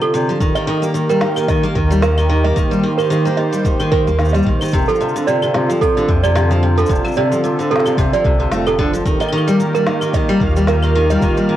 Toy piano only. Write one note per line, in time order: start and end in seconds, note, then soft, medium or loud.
0.02 0.13 A4 medium
0.55 0.62 D#5 loud
1.10 1.21 A#4 medium
1.48 1.57 D#5 loud
2.02 2.17 A#4 loud
2.44 2.51 D#5 loud
2.98 3.10 A#4 medium
3.37 3.46 D#5 loud
3.92 4.06 A#4 medium
4.33 4.40 D#5 loud
4.88 4.99 A4 loud
5.27 5.36 D5 loud
5.81 5.96 A4 loud
6.23 6.30 D5 loud
6.78 6.89 A4 loud
7.17 7.25 D5 medium
7.71 7.85 A4 loud
8.13 8.20 D5 medium
8.67 8.78 A4 loud
9.21 9.28 D#5 loud
9.75 9.86 A#4 loud
10.14 10.22 D#5 loud
10.68 10.82 A#4 loud
11.10 11.17 D#5 loud